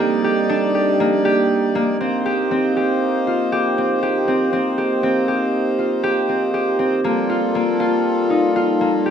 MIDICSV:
0, 0, Header, 1, 3, 480
1, 0, Start_track
1, 0, Tempo, 503778
1, 1911, Time_signature, 5, 2, 24, 8
1, 8674, End_track
2, 0, Start_track
2, 0, Title_t, "Harp"
2, 0, Program_c, 0, 46
2, 0, Note_on_c, 0, 58, 82
2, 0, Note_on_c, 0, 60, 72
2, 0, Note_on_c, 0, 62, 84
2, 0, Note_on_c, 0, 67, 75
2, 228, Note_off_c, 0, 67, 0
2, 231, Note_on_c, 0, 67, 67
2, 467, Note_off_c, 0, 62, 0
2, 471, Note_on_c, 0, 62, 86
2, 708, Note_off_c, 0, 67, 0
2, 712, Note_on_c, 0, 67, 64
2, 950, Note_off_c, 0, 58, 0
2, 953, Note_on_c, 0, 58, 80
2, 1186, Note_off_c, 0, 67, 0
2, 1190, Note_on_c, 0, 67, 78
2, 1665, Note_off_c, 0, 58, 0
2, 1669, Note_on_c, 0, 58, 76
2, 1907, Note_off_c, 0, 60, 0
2, 1911, Note_on_c, 0, 60, 70
2, 2146, Note_off_c, 0, 67, 0
2, 2149, Note_on_c, 0, 67, 71
2, 2388, Note_off_c, 0, 60, 0
2, 2392, Note_on_c, 0, 60, 74
2, 2632, Note_off_c, 0, 67, 0
2, 2635, Note_on_c, 0, 67, 68
2, 3117, Note_on_c, 0, 65, 58
2, 3138, Note_off_c, 0, 62, 0
2, 3352, Note_off_c, 0, 67, 0
2, 3356, Note_on_c, 0, 67, 77
2, 3598, Note_off_c, 0, 60, 0
2, 3602, Note_on_c, 0, 60, 64
2, 3832, Note_off_c, 0, 67, 0
2, 3836, Note_on_c, 0, 67, 74
2, 4072, Note_off_c, 0, 60, 0
2, 4076, Note_on_c, 0, 60, 67
2, 4310, Note_off_c, 0, 60, 0
2, 4314, Note_on_c, 0, 60, 74
2, 4549, Note_off_c, 0, 67, 0
2, 4553, Note_on_c, 0, 67, 69
2, 4732, Note_off_c, 0, 58, 0
2, 4791, Note_off_c, 0, 60, 0
2, 4794, Note_on_c, 0, 60, 75
2, 5027, Note_off_c, 0, 67, 0
2, 5031, Note_on_c, 0, 67, 67
2, 5510, Note_off_c, 0, 65, 0
2, 5513, Note_on_c, 0, 65, 57
2, 5746, Note_off_c, 0, 67, 0
2, 5750, Note_on_c, 0, 67, 80
2, 5987, Note_off_c, 0, 60, 0
2, 5991, Note_on_c, 0, 60, 63
2, 6226, Note_off_c, 0, 67, 0
2, 6230, Note_on_c, 0, 67, 73
2, 6466, Note_off_c, 0, 60, 0
2, 6469, Note_on_c, 0, 60, 68
2, 6711, Note_on_c, 0, 58, 83
2, 6948, Note_off_c, 0, 65, 0
2, 6952, Note_on_c, 0, 65, 68
2, 7191, Note_off_c, 0, 58, 0
2, 7195, Note_on_c, 0, 58, 77
2, 7427, Note_off_c, 0, 65, 0
2, 7431, Note_on_c, 0, 65, 73
2, 7909, Note_on_c, 0, 63, 57
2, 8151, Note_off_c, 0, 65, 0
2, 8155, Note_on_c, 0, 65, 75
2, 8389, Note_off_c, 0, 58, 0
2, 8392, Note_on_c, 0, 58, 75
2, 8473, Note_off_c, 0, 67, 0
2, 8630, Note_on_c, 0, 67, 70
2, 8674, Note_off_c, 0, 58, 0
2, 8674, Note_off_c, 0, 60, 0
2, 8674, Note_off_c, 0, 63, 0
2, 8674, Note_off_c, 0, 65, 0
2, 8674, Note_off_c, 0, 67, 0
2, 8674, End_track
3, 0, Start_track
3, 0, Title_t, "Harmonium"
3, 0, Program_c, 1, 20
3, 0, Note_on_c, 1, 55, 72
3, 0, Note_on_c, 1, 63, 61
3, 0, Note_on_c, 1, 74, 84
3, 1878, Note_off_c, 1, 74, 0
3, 1889, Note_off_c, 1, 63, 0
3, 1890, Note_off_c, 1, 55, 0
3, 1909, Note_on_c, 1, 63, 61
3, 1909, Note_on_c, 1, 72, 68
3, 1910, Note_on_c, 1, 58, 66
3, 6675, Note_off_c, 1, 63, 0
3, 6675, Note_off_c, 1, 72, 0
3, 6676, Note_off_c, 1, 58, 0
3, 6713, Note_on_c, 1, 65, 66
3, 6714, Note_on_c, 1, 55, 65
3, 6714, Note_on_c, 1, 69, 72
3, 6716, Note_on_c, 1, 58, 60
3, 8674, Note_off_c, 1, 55, 0
3, 8674, Note_off_c, 1, 58, 0
3, 8674, Note_off_c, 1, 65, 0
3, 8674, Note_off_c, 1, 69, 0
3, 8674, End_track
0, 0, End_of_file